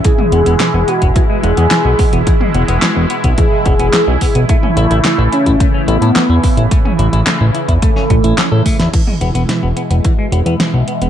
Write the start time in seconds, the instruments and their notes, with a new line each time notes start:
Already playing: analog synth pad E3 E4
0.04 analog synth pad B2 G#3, clean electric guitar E3, soft synth lead G#4, kick, closed hi-hat
0.18 clean electric guitar G#3, mid tom
0.32 analog synth bass E1, clean electric guitar B3, closed hi-hat
0.46 analog synth bass E1, clean electric guitar B3, closed hi-hat
0.60 clean electric guitar E3, snare, clap, closed hi-hat
0.74 analog synth bass E1, clean electric guitar B3
0.88 clean electric guitar B3, soft synth lead F#4, closed hi-hat
1.02 analog synth bass E1, clean electric guitar B3, kick, closed hi-hat
1.16 clean electric guitar E3, kick, closed hi-hat
1.30 clean electric guitar G#3
1.43 analog synth bass E1, clean electric guitar B3, soft synth lead G#4, closed hi-hat
1.57 analog synth bass E2, clean electric guitar B3, closed hi-hat
1.71 clean electric guitar E3, snare, clap, closed hi-hat
1.85 analog synth bass B1, clean electric guitar B3
1.99 clean electric guitar B3, kick, open hi-hat
2.13 analog synth bass E1, clean electric guitar B3, closed hi-hat
2.27 clean electric guitar E3, kick, closed hi-hat
2.41 clean electric guitar G#3, mid tom
2.54 analog synth bass E1, clean electric guitar B3, closed hi-hat
2.68 analog synth bass E1, clean electric guitar B3, closed hi-hat
2.82 clean electric guitar E3, snare, clap, closed hi-hat
2.96 analog synth bass E1, clean electric guitar B3
3.10 clean electric guitar B3, closed hi-hat
3.24 analog synth bass B1, clean electric guitar B3, kick, closed hi-hat
3.38 clean electric guitar E3, soft synth lead G#4, kick, closed hi-hat
3.52 clean electric guitar G#3
3.66 analog synth bass E1, clean electric guitar B3, kick, closed hi-hat
3.79 analog synth bass E1, clean electric guitar B3, closed hi-hat
3.93 clean electric guitar E3, snare, clap, closed hi-hat
4.07 analog synth bass B1, clean electric guitar B3
4.21 clean electric guitar B3, kick, open hi-hat
4.35 analog synth bass B1, clean electric guitar B3, closed hi-hat
4.49 analog synth pad C#3 E3 A3, clean electric guitar A3, soft synth lead E4, kick, closed hi-hat
4.63 clean electric guitar C#4, mid tom
4.77 analog synth bass A1, clean electric guitar E4, closed hi-hat
4.91 analog synth bass A1, clean electric guitar E4, closed hi-hat
5.05 clean electric guitar A3, snare, clap, closed hi-hat
5.18 analog synth bass A1, clean electric guitar E4
5.33 soft synth lead C#4, clean electric guitar E4, closed hi-hat
5.46 analog synth bass A1, clean electric guitar E4, kick, closed hi-hat
5.60 clean electric guitar A3, kick, closed hi-hat
5.74 clean electric guitar C#4
5.88 analog synth bass A1, soft synth lead B3, clean electric guitar E4, closed hi-hat
6.02 analog synth bass A2, clean electric guitar E4, closed hi-hat
6.16 clean electric guitar A3, snare, clap, closed hi-hat
6.29 analog synth bass E2, clean electric guitar E4
6.43 clean electric guitar E4, kick, open hi-hat
6.57 analog synth bass A1, clean electric guitar E4, closed hi-hat
6.71 clean electric guitar A3, kick, closed hi-hat
6.85 clean electric guitar C#4, mid tom
6.99 analog synth bass A1, clean electric guitar E4, closed hi-hat
7.13 analog synth bass A1, clean electric guitar E4, closed hi-hat
7.27 clean electric guitar A3, snare, clap, closed hi-hat
7.41 analog synth bass A1, clean electric guitar E4
7.54 clean electric guitar E4, closed hi-hat
7.68 analog synth bass E2, clean electric guitar E4, kick, closed hi-hat
7.82 clean electric guitar A3, soft synth lead A3, kick, closed hi-hat
7.96 clean electric guitar C#4, snare
8.10 analog synth bass A1, clean electric guitar A3, kick, closed hi-hat
8.24 analog synth bass A1, clean electric guitar E4, closed hi-hat
8.38 clean electric guitar C#4, snare, clap, closed hi-hat
8.52 analog synth bass A2, clean electric guitar A4
8.66 clean electric guitar A3, kick, open hi-hat
8.79 analog synth bass E2, clean electric guitar E4, snare, closed hi-hat
8.93 analog synth pad B2 E3 G#3 E4, clean electric guitar E3, kick, closed hi-hat, crash
9.07 clean electric guitar G#3, mid tom
9.21 analog synth bass E1, clean electric guitar B3, closed hi-hat
9.35 analog synth bass E1, clean electric guitar B3, closed hi-hat
9.49 clean electric guitar E3, snare, closed hi-hat
9.63 analog synth bass E1, clean electric guitar B3
9.77 clean electric guitar B3, closed hi-hat
9.90 analog synth bass E1, clean electric guitar B3, closed hi-hat
10.04 clean electric guitar E3, kick, closed hi-hat
10.19 clean electric guitar G#3
10.32 analog synth bass E1, clean electric guitar B3, closed hi-hat
10.46 analog synth bass E2, clean electric guitar B3, closed hi-hat
10.60 clean electric guitar E3, snare, closed hi-hat
10.74 analog synth bass B1, clean electric guitar B3
10.88 clean electric guitar B3, closed hi-hat
11.02 analog synth bass E1, clean electric guitar B3, closed hi-hat